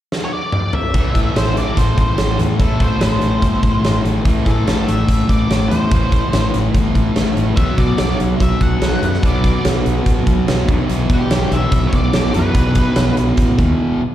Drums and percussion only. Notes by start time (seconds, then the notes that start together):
0.12 snare
0.53 mid tom
0.73 floor tom
0.94 kick, closed hi-hat
1.15 kick, closed hi-hat
1.36 snare, closed hi-hat
1.57 closed hi-hat
1.77 kick, closed hi-hat
1.97 kick, closed hi-hat
2.18 snare, closed hi-hat
2.39 closed hi-hat
2.59 kick, closed hi-hat
2.80 kick, closed hi-hat
3.01 snare, closed hi-hat
3.21 closed hi-hat
3.42 kick, closed hi-hat
3.63 kick, closed hi-hat
3.84 snare, closed hi-hat
4.05 closed hi-hat
4.25 kick, closed hi-hat
4.46 kick, closed hi-hat
4.67 snare, closed hi-hat
4.88 closed hi-hat
5.08 kick, closed hi-hat
5.29 kick, closed hi-hat
5.50 snare, closed hi-hat
5.71 closed hi-hat
5.91 kick, closed hi-hat
6.12 kick, closed hi-hat
6.33 snare, closed hi-hat
6.54 closed hi-hat
6.74 kick, closed hi-hat
6.95 kick, closed hi-hat
7.16 snare, closed hi-hat
7.37 closed hi-hat
7.57 kick, closed hi-hat
7.78 kick, closed hi-hat
7.98 snare, closed hi-hat
8.20 closed hi-hat
8.40 kick, closed hi-hat
8.61 kick, closed hi-hat
8.81 snare, closed hi-hat
9.03 closed hi-hat
9.14 snare
9.23 kick, closed hi-hat
9.44 kick, closed hi-hat
9.65 snare, closed hi-hat
9.86 closed hi-hat
10.06 kick, closed hi-hat
10.27 kick, closed hi-hat
10.48 snare, closed hi-hat
10.69 kick, closed hi-hat
10.89 closed hi-hat
11.09 kick, closed hi-hat
11.30 snare, closed hi-hat
11.51 closed hi-hat
11.72 kick, closed hi-hat
11.93 kick, closed hi-hat
12.13 snare, closed hi-hat
12.34 closed hi-hat
12.54 kick, closed hi-hat
12.75 kick, closed hi-hat
12.96 snare, closed hi-hat
13.17 closed hi-hat
13.37 kick, closed hi-hat
13.59 kick, closed hi-hat